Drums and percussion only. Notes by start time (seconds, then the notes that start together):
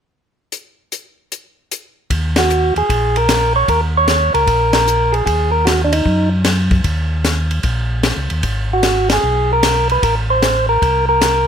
0.52 closed hi-hat
0.92 closed hi-hat
1.32 closed hi-hat
1.72 closed hi-hat
2.10 kick, ride
2.36 snare, ride
2.50 hi-hat pedal
2.76 ride
2.89 kick, ride
3.16 ride
3.29 snare, hi-hat pedal, ride
3.68 kick, ride
4.08 snare, hi-hat pedal, ride
4.35 ride
4.47 kick, ride
4.73 snare, ride
4.87 hi-hat pedal
5.14 ride
5.26 kick, ride
5.67 snare, hi-hat pedal, ride
5.93 ride
6.06 kick
6.45 snare, hi-hat pedal, ride
6.71 kick, ride
6.84 kick, ride
7.24 snare, hi-hat pedal, ride
7.51 ride
7.63 kick, ride
8.03 snare, hi-hat pedal, ride
8.30 ride
8.43 kick, ride
8.83 snare, hi-hat pedal, ride
9.10 snare, ride
9.63 snare, hi-hat pedal, ride
9.89 ride
10.03 kick, ride
10.42 snare, hi-hat pedal, ride
10.82 kick, ride
11.21 snare, hi-hat pedal, ride